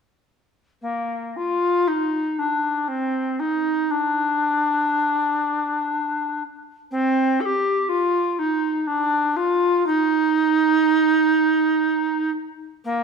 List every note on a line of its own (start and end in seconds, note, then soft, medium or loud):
0.81 1.37 A#3 medium
1.36 1.89 F4 medium
1.87 2.40 D#4 medium
2.38 2.89 D4 medium
2.88 3.41 C4 medium
3.39 3.92 D#4 medium
3.90 6.42 D4 medium
6.90 7.42 C4 medium
7.40 7.46 A4 medium
7.45 7.90 G4 medium
7.88 8.40 F4 medium
8.38 8.88 D#4 medium
8.87 9.37 D4 medium
9.36 9.85 F4 medium
9.86 12.30 D#4 loud
12.84 13.04 A#3 medium